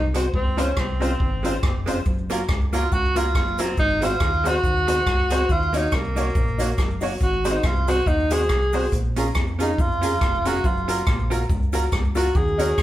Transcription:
Already playing: fingered electric bass C2
0.14 hollow-body jazz guitar G#3 C4 F#4, honky-tonk piano F#4 G#4 C5, closed hi-hat
0.34 fingered electric bass C#2, tenor saxophone C4, kick
0.57 hollow-body jazz guitar G#3 C4 F4, honky-tonk piano C#4 F4 C5, tenor saxophone C#4, closed hi-hat
0.77 fingered electric bass C2, tenor saxophone C4, kick, cross-stick
1.00 hollow-body jazz guitar G#3 C4 F4, honky-tonk piano C#4 F4 C5, closed hi-hat
1.20 fingered electric bass G#1, kick
1.43 hollow-body jazz guitar G#3 C4 F4, honky-tonk piano C#4 F4 C5, closed hi-hat
1.63 fingered electric bass F1, kick, cross-stick
1.86 hollow-body jazz guitar G#3 C4 F4, honky-tonk piano C#4 F4 C5, closed hi-hat
2.05 fingered electric bass F#1, kick, cabasa
2.30 hollow-body jazz guitar A#3 C#4 F4, honky-tonk piano F4 F#4 A#4, closed hi-hat, cabasa
2.48 fingered electric bass C#2, kick, cross-stick, cabasa
2.73 hollow-body jazz guitar A#3 C#4 F4, honky-tonk piano F4 F#4 A#4, tenor saxophone F4, closed hi-hat, cabasa
2.92 fingered electric bass C#2, tenor saxophone F#4, kick, cabasa
3.16 hollow-body jazz guitar A#3 C#4 F4, honky-tonk piano F4 F#4 A#4, tenor saxophone F4, closed hi-hat, cabasa
3.35 fingered electric bass F#1, kick, cross-stick, cabasa
3.58 hollow-body jazz guitar A#3 C#4 F4, tenor saxophone C4, honky-tonk piano F4 F#4 A#4, closed hi-hat, cabasa
3.77 fingered electric bass G#1, tenor saxophone D#4, kick, cabasa
4.01 hollow-body jazz guitar G#3 C4 F#4, tenor saxophone F4, honky-tonk piano F#4 G#4 C5, closed hi-hat, cabasa
4.20 fingered electric bass D#2, kick, cross-stick, cabasa
4.44 hollow-body jazz guitar G#3 C4 F#4, honky-tonk piano F#4 G#4 C5, closed hi-hat, cabasa
4.48 tenor saxophone F#4
4.64 fingered electric bass D#2, kick, cabasa
4.87 hollow-body jazz guitar G#3 C4 F#4, honky-tonk piano F#4 G#4 C5, closed hi-hat, cabasa
5.06 fingered electric bass C#2, kick, cross-stick, cabasa
5.30 hollow-body jazz guitar G#3 C4 F#4, honky-tonk piano F#4 G#4 C5, closed hi-hat, cabasa
5.49 fingered electric bass D#2, tenor saxophone F4, kick, cabasa
5.73 hollow-body jazz guitar A#3 C#4 F#4, honky-tonk piano D#4 F#4 C#5, tenor saxophone D#4, closed hi-hat, cabasa
5.92 fingered electric bass C2, tenor saxophone A#3, kick, cross-stick, cabasa
6.16 hollow-body jazz guitar A#3 C#4 F#4, honky-tonk piano D#4 F#4 C#5, closed hi-hat, cabasa
6.35 fingered electric bass A#1, kick, cabasa
6.58 hollow-body jazz guitar A#3 C#4 F#4, honky-tonk piano D#4 F#4 C#5, closed hi-hat, cabasa
6.78 fingered electric bass F#1, kick, cross-stick, cabasa
7.01 hollow-body jazz guitar A#3 C#4 F#4, honky-tonk piano D#4 F#4 C#5, open hi-hat, cabasa
7.20 fingered electric bass G#1, tenor saxophone F#4, kick, hi-hat pedal, cabasa
7.44 hollow-body jazz guitar G#3 C4 F#4, honky-tonk piano F#4 G#4 C5, closed hi-hat, cabasa
7.52 tenor saxophone D#4
7.63 fingered electric bass C2, tenor saxophone F4, kick, cross-stick, cabasa
7.87 hollow-body jazz guitar G#3 C4 F#4, honky-tonk piano F#4 G#4 C5, tenor saxophone F#4, closed hi-hat, cabasa
8.06 fingered electric bass D#2, tenor saxophone D#4, kick, cabasa
8.30 hollow-body jazz guitar G#3 C4 F#4, honky-tonk piano F#4 G#4 C5, tenor saxophone G#4, closed hi-hat, cabasa
8.49 fingered electric bass C2, kick, cross-stick, cabasa
8.73 hollow-body jazz guitar G#3 C4 F#4, honky-tonk piano F#4 G#4 C5, open hi-hat, cabasa
8.92 fingered electric bass A#1, kick, hi-hat pedal, cabasa
9.16 hollow-body jazz guitar C#4 F4 G#4, honky-tonk piano C#4 G#4 A#4, closed hi-hat, cabasa
9.34 fingered electric bass F2, kick, cross-stick, cabasa
9.59 hollow-body jazz guitar C#4 F4 G#4, honky-tonk piano C#4 G#4 A#4, tenor saxophone D#4, closed hi-hat, cabasa
9.78 fingered electric bass F2, tenor saxophone F4, kick, cabasa
10.02 hollow-body jazz guitar C#4 F4 G#4, honky-tonk piano C#4 G#4 A#4, closed hi-hat, cabasa
10.21 fingered electric bass F1, kick, cross-stick, cabasa
10.45 honky-tonk piano C#4 G#4 A#4, hollow-body jazz guitar C#4 F4 G#4, tenor saxophone F#4, closed hi-hat, cabasa
10.64 fingered electric bass F#1, tenor saxophone F4, kick, cabasa
10.88 hollow-body jazz guitar C#4 F4 A#4, honky-tonk piano F4 F#4 A#4, closed hi-hat, cabasa
11.06 fingered electric bass A#1, kick, cross-stick, cabasa
11.30 hollow-body jazz guitar C#4 F4 A#4, honky-tonk piano F4 F#4 A#4, closed hi-hat, cabasa
11.50 fingered electric bass C#2, kick, cabasa
11.73 hollow-body jazz guitar C#4 F4 A#4, honky-tonk piano F4 F#4 A#4, closed hi-hat, cabasa
11.92 fingered electric bass C#2, kick, cross-stick, cabasa
12.15 hollow-body jazz guitar C#4 F4 A#4, honky-tonk piano F4 F#4 A#4, tenor saxophone F#4, closed hi-hat, cabasa
12.35 fingered electric bass D#2, tenor saxophone G#4, kick, cabasa
12.58 hollow-body jazz guitar C#4 F#4 A#4, honky-tonk piano D#4 F#4 C#5, closed hi-hat, cabasa
12.78 fingered electric bass C#2, kick, cross-stick, cabasa

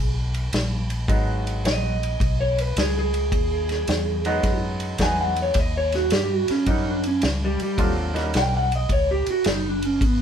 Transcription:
Already playing: fingered electric bass B1, clean electric guitar G#4
0.34 ride
0.53 fingered electric bass A#1, snare, ride
0.90 ride
1.08 fingered electric bass G#1, upright piano F#3 G#3 B3 D#4 F#4, kick, ride
1.47 ride
1.64 fingered electric bass A#1, clean electric guitar D#5, snare, ride
2.03 ride
2.20 fingered electric bass B1, kick, ride
2.41 clean electric guitar C#5
2.58 clean electric guitar B4, ride
2.76 fingered electric bass C#2, clean electric guitar G#4, snare, ride
2.99 clean electric guitar G#4
3.14 ride
3.32 fingered electric bass D#2, kick, ride
3.69 snare, ride
3.87 fingered electric bass E2, snare, ride
4.25 upright piano F#3 G#3 B3 D#4 F#4, ride
4.43 fingered electric bass F#2, kick, snare, ride
4.80 ride
4.98 fingered electric bass E2, upright piano F#3 G#3 B3 D#4 F#4, kick, snare, ride
5.02 clean electric guitar G#5
5.21 clean electric guitar F#5
5.36 ride
5.42 clean electric guitar C#5
5.54 fingered electric bass D#2, kick, snare, ride
5.59 clean electric guitar D#5
5.77 clean electric guitar C#5
5.92 clean electric guitar F#4, snare, ride
6.10 fingered electric bass G2, clean electric guitar G4, snare, ride
6.33 clean electric guitar F#4
6.48 clean electric guitar C#4, muted fingered electric bass stroke, snare, ride
6.66 fingered electric bass F#2, upright piano G3 A#3 C#4 D#4 F#4, clean electric guitar D#4, kick, ride
6.89 clean electric guitar D4
7.03 clean electric guitar C#4, ride
7.22 fingered electric bass C#2, snare, ride
7.45 clean electric guitar G3
7.60 clean electric guitar G3, ride
7.77 fingered electric bass D#2, upright piano F#3 A3 C4 D4 F4, kick, ride
8.14 upright piano G3 A#3 C#4 D#4 F#4, snare, ride
8.34 fingered electric bass B1, clean electric guitar G5, snare, ride
8.57 clean electric guitar F#5
8.72 clean electric guitar D#5, ride
8.89 fingered electric bass C#2, clean electric guitar C#5, kick, ride
9.11 clean electric guitar G4
9.26 muted fingered electric bass stroke, ride
9.31 clean electric guitar F#4
9.44 fingered electric bass F#1, snare, ride
9.49 clean electric guitar D#4
9.69 clean electric guitar D4
9.82 clean electric guitar C#4, ride
10.01 fingered electric bass G#1, clean electric guitar B3, kick, ride

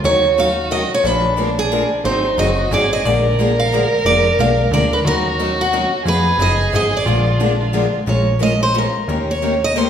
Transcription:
0.04 analog synth bass D#2, steel-string acoustic guitar D#3 F#3 C#4 D#4 A#4 C#5, violin F#4
0.38 steel-string acoustic guitar D#3 F#3 C#4 D#4 A#4 F5
0.71 steel-string acoustic guitar D#3 F#3 C#4 D#4 A#4 D#5
0.94 steel-string acoustic guitar C#5
1.04 analog synth bass A#1, steel-string acoustic guitar D3 F3 G#3 A#3 D4 F4 G#4 A#4 B4, violin D4
1.37 steel-string acoustic guitar D3 F3 G#3 A#3 D4 F4 G#4 A#4
1.59 steel-string acoustic guitar G#4
1.71 steel-string acoustic guitar D3 F3 G#3 A#3 D4 F4 G#4 A#4
2.04 analog synth bass G#1, steel-string acoustic guitar D#3 F#3 C4 D#4 G#4 C5, violin D#4
2.38 analog synth bass F#1, steel-string acoustic guitar D#3 F#3 C4 D#4 G#4 D#5, violin F#4
2.71 analog synth bass G#1, steel-string acoustic guitar D#3 F#3 C4 D#4 G#4 D5, violin G#4
2.93 steel-string acoustic guitar D#5
3.05 analog synth bass A#1, steel-string acoustic guitar D3 F3 G#3 A#3 D4 F4 G#4 A#4 D5, violin A#4
3.39 steel-string acoustic guitar D3 F3 G#3 A#3 D4 F4 G#4 A#4
3.60 steel-string acoustic guitar F5
3.72 steel-string acoustic guitar D3 F3 G#3 A#3 D4 F4 G#4 A#4
4.05 analog synth bass F1, steel-string acoustic guitar D3 F3 G#3 A#3 D4 F4 G#4 A#4 D5
4.39 analog synth bass B1, steel-string acoustic guitar D3 F3 G#3 A#3 D4 F4 G#4 A#4 F5
4.71 analog synth bass D2, steel-string acoustic guitar D3 F3 G#3 A#3 D4 F4 G#4 A#4 D5
4.93 steel-string acoustic guitar B4
5.04 analog synth bass D#2, steel-string acoustic guitar D#3 F#3 C#4 D#4 A#4, violin F#4
5.39 steel-string acoustic guitar D#3 F#3 C#4 D#4 A#4
5.61 steel-string acoustic guitar F#4
5.73 steel-string acoustic guitar D#3 F#3 C#4 D#4 A#4
6.05 analog synth bass F2, steel-string acoustic guitar F3 B3 D#4 G#4 B4, violin G#4
6.39 analog synth bass F#1, steel-string acoustic guitar F3 B3 D#4 G#4 D#5
6.73 analog synth bass G#1, steel-string acoustic guitar F3 B3 D#4 G#4 D#5
6.97 steel-string acoustic guitar D5
7.06 analog synth bass A#1, steel-string acoustic guitar D3 F3 G#3 A#3 D4 F4 G#4 A#4, violin F4
7.39 steel-string acoustic guitar D3 F3 G#3 A#3 D4 F4 G#4 A#4, violin D4
7.61 violin F4
7.73 steel-string acoustic guitar D3 F3 G#3 A#3 D4 F4 G#4 A#4
8.06 analog synth bass A#1, steel-string acoustic guitar F3 G#3 C#4 F4 A#4 C#5
8.39 steel-string acoustic guitar F3 G#3 C#4 F4 A#4 D#5
8.63 steel-string acoustic guitar C5
8.74 steel-string acoustic guitar F3 G#3 C#4 F4 A#4
8.78 steel-string acoustic guitar A#4
9.08 analog synth bass D#2, steel-string acoustic guitar D#3 A#3 C#4 G4 A#4
9.31 steel-string acoustic guitar C#5
9.42 steel-string acoustic guitar D#3 A#3 C#4 G4 A#4
9.64 steel-string acoustic guitar D#5
9.76 steel-string acoustic guitar D#3 A#3 C#4 G4 A#4 C5

